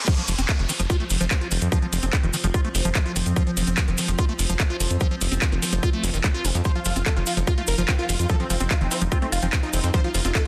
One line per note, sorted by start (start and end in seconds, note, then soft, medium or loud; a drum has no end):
0.08 10.47 F3 medium
0.08 0.14 F3 loud
0.08 6.67 C4 medium
0.08 kick loud
0.08 closed hi-hat medium
0.08 crash loud
0.08 downlifter medium
0.08 cabasa soft
0.18 0.22 F3 medium
0.18 closed hi-hat soft
0.28 0.35 F1 loud
0.28 0.33 F3 medium
0.28 open hi-hat loud
0.28 cabasa loud
0.38 0.45 F1 medium
0.38 0.41 C4 medium
0.38 closed hi-hat medium
0.38 cabasa medium
0.49 kick loud
0.49 clap loud
0.49 closed hi-hat medium
0.49 cabasa soft
0.59 0.66 F1 medium
0.59 0.62 D#3 loud
0.59 closed hi-hat soft
0.69 0.72 D#3 medium
0.69 open hi-hat loud
0.69 cabasa medium
0.79 0.86 F1 medium
0.79 0.82 F3 loud
0.79 closed hi-hat medium
0.79 cabasa soft
0.90 0.97 F4 loud
0.90 kick loud
0.90 closed hi-hat medium
0.90 cabasa soft
1.00 1.05 A3 medium
1.00 closed hi-hat soft
1.10 1.17 F1 loud
1.10 open hi-hat loud
1.10 cabasa medium
1.21 1.27 F1 medium
1.21 1.25 F3 loud
1.21 closed hi-hat medium
1.21 cabasa medium
1.31 kick loud
1.31 clap loud
1.31 closed hi-hat medium
1.31 cabasa soft
1.41 1.48 F4 medium
1.41 closed hi-hat soft
1.51 1.58 F1 loud
1.51 1.54 D#3 medium
1.51 open hi-hat loud
1.51 cabasa medium
1.62 1.68 F2 medium
1.62 closed hi-hat medium
1.62 cabasa medium
1.72 1.79 F3 loud
1.72 kick loud
1.72 closed hi-hat medium
1.72 cabasa soft
1.82 1.87 F3 medium
1.82 closed hi-hat soft
1.93 1.99 F1 medium
1.93 1.97 F3 medium
1.93 open hi-hat loud
1.93 cabasa loud
2.02 2.10 F1 medium
2.02 2.06 C4 medium
2.02 closed hi-hat medium
2.02 cabasa medium
2.13 kick loud
2.13 clap loud
2.13 closed hi-hat medium
2.13 cabasa soft
2.23 2.30 F1 medium
2.23 2.26 D#3 loud
2.23 closed hi-hat soft
2.34 2.36 D#3 medium
2.34 open hi-hat loud
2.34 cabasa loud
2.44 2.51 F1 medium
2.44 2.47 F3 loud
2.44 closed hi-hat medium
2.44 cabasa medium
2.54 2.61 F4 loud
2.54 kick loud
2.54 closed hi-hat medium
2.54 cabasa soft
2.65 2.69 A3 medium
2.65 closed hi-hat soft
2.75 2.81 F1 loud
2.75 open hi-hat loud
2.75 cabasa medium
2.85 2.92 F1 medium
2.85 2.90 F3 loud
2.85 closed hi-hat medium
2.85 cabasa medium
2.95 kick loud
2.95 clap loud
2.95 closed hi-hat medium
2.95 cabasa soft
3.06 3.12 F4 medium
3.06 closed hi-hat soft
3.16 3.23 F1 medium
3.16 3.19 D#3 medium
3.16 open hi-hat loud
3.16 cabasa medium
3.26 3.33 F2 medium
3.26 closed hi-hat medium
3.26 cabasa medium
3.36 3.43 F3 loud
3.36 kick loud
3.36 closed hi-hat medium
3.36 cabasa soft
3.47 3.51 F3 medium
3.47 closed hi-hat soft
3.57 3.64 F1 loud
3.57 3.61 F3 medium
3.57 open hi-hat loud
3.57 cabasa medium
3.67 3.74 F1 medium
3.67 3.70 C4 medium
3.67 closed hi-hat medium
3.67 cabasa medium
3.77 kick loud
3.77 clap loud
3.77 closed hi-hat medium
3.77 cabasa soft
3.88 3.95 F1 medium
3.88 3.90 D#3 loud
3.88 closed hi-hat soft
3.98 4.01 D#3 medium
3.98 open hi-hat loud
3.98 cabasa loud
4.08 4.15 F1 medium
4.08 4.11 F3 loud
4.08 closed hi-hat medium
4.08 cabasa medium
4.18 4.25 F4 loud
4.18 kick loud
4.18 closed hi-hat medium
4.18 cabasa soft
4.29 4.33 A3 medium
4.29 closed hi-hat soft
4.39 4.46 F1 loud
4.39 open hi-hat loud
4.39 cabasa medium
4.49 4.56 F1 medium
4.49 4.54 F3 loud
4.49 closed hi-hat medium
4.49 cabasa medium
4.60 kick loud
4.60 clap loud
4.60 closed hi-hat medium
4.60 cabasa soft
4.70 4.77 F4 medium
4.70 closed hi-hat soft
4.80 4.87 F1 medium
4.80 4.83 D#3 medium
4.80 open hi-hat loud
4.80 cabasa loud
4.90 4.97 F2 medium
4.90 closed hi-hat medium
4.90 cabasa soft
5.00 5.08 F3 loud
5.00 kick loud
5.00 closed hi-hat medium
5.00 cabasa soft
5.11 5.16 F3 medium
5.11 closed hi-hat soft
5.21 5.28 F1 medium
5.21 5.26 F3 medium
5.21 open hi-hat loud
5.21 cabasa medium
5.32 5.38 F1 medium
5.32 5.34 C4 medium
5.32 closed hi-hat medium
5.32 cabasa medium
5.42 kick loud
5.42 clap loud
5.42 closed hi-hat medium
5.42 cabasa soft
5.52 5.59 F1 medium
5.52 5.55 D#3 loud
5.52 closed hi-hat soft
5.62 5.65 D#3 medium
5.62 open hi-hat loud
5.62 cabasa medium
5.72 5.79 F1 medium
5.72 5.75 F3 loud
5.72 closed hi-hat medium
5.72 cabasa soft
5.83 5.90 F4 loud
5.83 kick loud
5.83 closed hi-hat soft
5.83 cabasa soft
5.93 6.05 A3 medium
5.93 closed hi-hat soft
6.04 6.10 F1 loud
6.04 6.10 D#3 medium
6.04 open hi-hat loud
6.04 cabasa medium
6.14 6.21 F1 medium
6.14 6.18 D#3 medium
6.14 closed hi-hat medium
6.14 cabasa medium
6.24 6.29 F#3 medium
6.24 kick loud
6.24 clap loud
6.24 closed hi-hat soft
6.24 cabasa soft
6.34 6.46 F4 loud
6.34 closed hi-hat soft
6.45 6.51 F1 loud
6.45 6.49 C4 medium
6.45 open hi-hat loud
6.45 cabasa medium
6.55 6.62 F2 medium
6.55 6.58 F3 medium
6.55 closed hi-hat medium
6.55 cabasa medium
6.64 6.72 F3 loud
6.64 10.47 D#4 medium
6.64 6.72 C5 loud
6.64 kick loud
6.64 closed hi-hat medium
6.64 cabasa soft
6.75 6.80 F3 medium
6.75 6.82 F4 medium
6.75 closed hi-hat soft
6.85 6.92 F1 medium
6.85 6.90 F3 medium
6.85 6.92 F4 medium
6.85 open hi-hat loud
6.85 cabasa loud
6.96 7.03 F1 medium
6.96 6.99 C4 medium
6.96 7.02 F4 medium
6.96 closed hi-hat medium
6.96 cabasa medium
7.06 7.13 A4 medium
7.06 kick loud
7.06 clap loud
7.06 closed hi-hat medium
7.06 cabasa soft
7.16 7.23 F1 medium
7.16 7.19 D#3 loud
7.16 7.23 F4 medium
7.16 closed hi-hat soft
7.26 7.33 F4 medium
7.26 open hi-hat loud
7.26 cabasa loud
7.37 7.44 F1 medium
7.37 7.40 F3 loud
7.37 closed hi-hat medium
7.37 cabasa soft
7.47 7.54 F4 loud
7.47 7.54 F4 medium
7.47 kick loud
7.47 closed hi-hat medium
7.47 cabasa soft
7.58 7.62 A3 medium
7.58 7.64 F4 medium
7.58 closed hi-hat soft
7.67 7.75 F1 loud
7.67 7.74 A#4 loud
7.67 open hi-hat loud
7.67 cabasa medium
7.78 7.85 F1 medium
7.78 7.83 F3 loud
7.78 7.85 F4 medium
7.78 closed hi-hat medium
7.78 cabasa medium
7.88 7.91 D#3 medium
7.88 8.30 C4 medium
7.88 7.95 F4 medium
7.88 kick loud
7.88 clap loud
7.88 closed hi-hat medium
7.88 cabasa soft
7.99 8.05 F4 medium
7.99 closed hi-hat soft
8.09 8.16 F1 loud
8.09 8.12 D#3 medium
8.09 8.15 F4 medium
8.09 open hi-hat loud
8.09 cabasa medium
8.19 8.26 F2 medium
8.19 8.26 F4 medium
8.19 closed hi-hat medium
8.19 cabasa medium
8.29 8.36 F3 loud
8.29 8.36 A4 loud
8.29 kick loud
8.29 closed hi-hat medium
8.29 cabasa soft
8.40 8.44 F3 medium
8.40 8.46 C4 medium
8.40 closed hi-hat soft
8.50 8.57 F1 medium
8.50 8.68 F3 medium
8.50 8.55 F3 medium
8.50 8.57 C4 medium
8.50 open hi-hat loud
8.50 cabasa loud
8.60 8.67 F1 medium
8.60 8.63 C4 medium
8.60 8.67 C4 medium
8.60 closed hi-hat medium
8.60 cabasa medium
8.71 8.77 F4 medium
8.71 kick loud
8.71 clap loud
8.71 closed hi-hat medium
8.71 cabasa soft
8.81 8.88 F1 medium
8.81 8.84 D#3 loud
8.81 8.87 C4 medium
8.81 closed hi-hat soft
8.91 9.20 F3 medium
8.91 8.98 C4 medium
8.91 open hi-hat loud
8.91 cabasa loud
9.01 9.08 F1 medium
9.01 9.04 F3 loud
9.01 closed hi-hat medium
9.01 cabasa medium
9.12 9.18 C4 medium
9.12 9.18 F4 loud
9.12 kick loud
9.12 closed hi-hat medium
9.12 cabasa soft
9.22 9.27 A3 medium
9.22 9.80 A3 medium
9.22 9.29 C4 medium
9.22 closed hi-hat soft
9.32 9.39 F1 loud
9.32 9.39 F4 loud
9.32 open hi-hat loud
9.32 cabasa medium
9.42 9.49 F1 medium
9.42 9.47 F3 loud
9.42 9.49 C4 medium
9.42 closed hi-hat medium
9.42 cabasa medium
9.53 9.56 D#3 medium
9.53 9.59 C4 medium
9.53 kick loud
9.53 clap loud
9.53 closed hi-hat medium
9.53 cabasa soft
9.63 9.70 D#4 loud
9.63 9.70 F4 medium
9.63 closed hi-hat soft
9.73 9.80 F1 loud
9.73 9.76 D#3 medium
9.73 9.80 C4 medium
9.73 open hi-hat loud
9.73 cabasa medium
9.84 9.90 F2 medium
9.84 9.90 C4 medium
9.84 closed hi-hat medium
9.84 cabasa soft
9.94 10.01 F3 loud
9.94 10.00 C5 loud
9.94 kick loud
9.94 closed hi-hat medium
9.94 cabasa soft
10.04 10.09 F3 medium
10.04 10.11 F4 medium
10.04 closed hi-hat soft
10.14 10.21 F1 medium
10.14 10.19 F3 medium
10.14 10.21 F4 medium
10.14 open hi-hat loud
10.14 cabasa medium
10.25 10.32 F1 medium
10.25 10.27 C4 medium
10.25 10.31 F4 medium
10.25 closed hi-hat medium
10.25 cabasa soft
10.35 10.42 A4 medium
10.35 kick loud
10.35 clap loud
10.35 closed hi-hat medium
10.35 cabasa soft